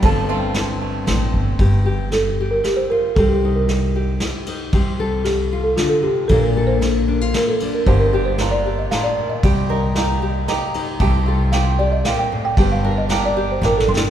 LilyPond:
<<
  \new Staff \with { instrumentName = "Marimba" } { \time 3/4 \key g \minor \tempo 4 = 115 << { a''2~ a''8 r8 | r2. | r2. | r2. |
r2. | r2. | r2. | r2. |
r2 r8 c'''8 | } \\ { r2. | r4 a'8. bes'16 g'16 c''16 bes'8 | a'16 g'8 bes'8 r4. r16 | r4 g'8. a'16 f'16 a'16 g'8 |
a'16 bes'8 c''8 r8. bes'16 a'8 bes'16 | c''16 bes'8 c''8 d''8 ees''16 f''16 d''8 ees''16~ | ees''16 r2 r8. | r4 f''8 d''16 ees''16 f''16 g''8 g''16~ |
g''16 f''8 ees''8 d''8 c''16 bes'16 a'8 r16 | } >> }
  \new Staff \with { instrumentName = "Nylon-string guitar" } { \time 3/4 \key g \minor << { <c' f' a'>8 c'2~ c'8 | g'8 g'4 g'4 f'8 | g'8 ees'4 g'4 ees'8 | g'8 a'4 f'4. |
<bes d' f'>8 a'4 d'16 f'8. d'8 | g'8 g'4 g'4. | g'8 bes'4 g'4 ees'8 | g'8 a'4 g'4. |
g'8 bes'4 g'4 d'8 | } \\ { g,2 a4 | g,4 r2 | c4 r2 | c4 r4 d8 c8 |
bes,4 r2 | g,4 r4 a,8 bes,8 | c4 r2 | c4 r4 bes,8 a,8 |
g,4 r2 | } >> }
  \new Staff \with { instrumentName = "Five-string banjo" } { \time 3/4 \key g \minor f8 <a c' f'>4 a8 c'4 | r2. | r2. | r2. |
r2. | <d f'>8 d'8 <bes d' f'>4 <bes d' f'>4 | <g g'>8 ees'8 <bes ees' g'>4 <bes ees' g'>4 | <a g'>8 f'8 <c' f' g'>4 <c' f' g'>4 |
<d g'>8 d'8 <bes d' g'>4 <bes d' g'>4 | }
  \new Staff \with { instrumentName = "Upright bass" } { \clef bass \time 3/4 \key g \minor g,,2 a,,8 g,,8 | g,,2 r4 | c,2 r4 | c,2 r4 |
bes,,2 r4 | g,,2 r4 | c,2 r4 | c,2 r4 |
g,,2 a,,8 g,,8 | }
  \new DrumStaff \with { instrumentName = "Drums" } \drummode { \time 3/4 <bd cymr>4 <cymr sn>4 <cymr sn>4 | <bd cymr>4 <cymr sn>4 <cymr sn>4 | <bd cymr>4 <cymr sn>4 <cymr sn>8 cymr8 | <bd cymr>4 <cymr sn>4 <cymr sn>4 |
<bd cymr>4 <cymr sn>4 <cymr sn>8 cymr8 | <bd cymr>4 <cymr sn>4 <cymr sn>4 | <bd cymr>4 <cymr sn>4 <cymr sn>8 cymr8 | <bd cymr>4 <cymr sn>4 <cymr sn>4 |
<bd cymr>4 <cymr sn>4 \tuplet 3/2 { sn8 sn8 sn8 } | }
>>